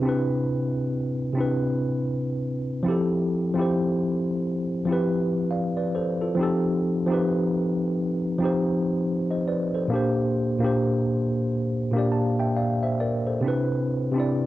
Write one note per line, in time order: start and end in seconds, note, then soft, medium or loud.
0.00 1.33 C3 medium
0.00 0.03 C4 medium
0.00 1.06 C4 medium
0.00 0.05 D4 medium
0.00 0.07 E4 medium
0.00 0.09 B4 loud
0.05 1.07 D4 medium
0.05 1.08 E4 medium
0.05 1.09 B4 medium
1.33 2.58 C3 medium
1.33 2.59 C4 medium
1.33 2.60 D4 medium
1.38 2.61 E4 medium
1.38 2.62 B4 medium
2.83 3.40 F3 medium
2.83 3.41 C4 medium
2.83 3.42 E4 medium
2.88 3.43 G4 medium
2.88 3.44 A4 medium
3.54 4.58 F3 medium
3.54 4.59 C4 medium
3.54 4.60 E4 medium
3.59 4.61 G4 medium
3.59 4.62 C5 medium
4.85 6.10 F3 medium
4.85 6.11 C4 medium
4.85 5.51 E4 medium
4.91 5.52 G4 medium
4.91 5.52 B4 loud
5.51 5.76 D5 soft
5.51 5.76 F5 medium
5.77 5.94 B4 medium
5.77 5.94 D5 medium
5.95 6.20 A4 medium
5.95 6.20 C5 medium
6.21 6.64 F4 medium
6.21 6.42 A4 medium
6.35 6.93 F3 medium
6.35 6.94 C4 medium
6.35 6.95 D#4 medium
6.41 6.96 G4 medium
6.41 6.96 A4 loud
7.06 8.11 F3 medium
7.06 8.12 C4 medium
7.06 8.13 D#4 medium
7.12 8.14 G4 medium
7.12 8.15 B4 loud
8.38 9.63 F3 medium
8.38 9.64 C4 medium
8.38 9.65 D#4 medium
8.44 9.66 G4 medium
8.44 9.05 C5 loud
9.31 9.47 C5 medium
9.31 9.47 D#5 medium
9.48 9.74 B4 medium
9.48 9.73 D5 medium
9.75 10.17 A4 medium
9.75 9.94 C5 medium
9.88 10.46 A#2 medium
9.88 10.47 A#3 medium
9.88 10.47 D4 medium
9.94 10.48 G4 medium
9.94 10.49 C5 loud
10.59 11.64 A#2 medium
10.59 11.65 A#3 medium
10.59 11.66 D4 medium
10.64 11.67 G4 medium
10.64 11.68 C5 medium
11.91 13.17 A#2 medium
11.91 13.17 A#3 medium
11.91 13.18 D4 medium
11.97 13.19 G4 medium
11.97 12.14 D5 medium
12.12 12.38 F5 soft
12.12 12.38 A5 medium
12.40 12.56 E5 medium
12.40 12.56 G5 medium
12.57 12.83 D5 medium
12.57 12.82 F5 medium
12.83 13.00 C5 medium
12.83 13.00 E5 medium
13.00 13.26 A#4 medium
13.00 13.26 D5 medium
13.27 13.69 A4 soft
13.27 13.69 C5 medium
13.41 13.98 C3 medium
13.41 13.99 C4 medium
13.41 14.00 D4 medium
13.46 14.01 E4 medium
13.46 14.02 B4 loud
14.12 14.46 C3 medium
14.12 14.46 C4 medium
14.12 14.46 D4 medium
14.18 14.46 E4 medium
14.18 14.46 D5 loud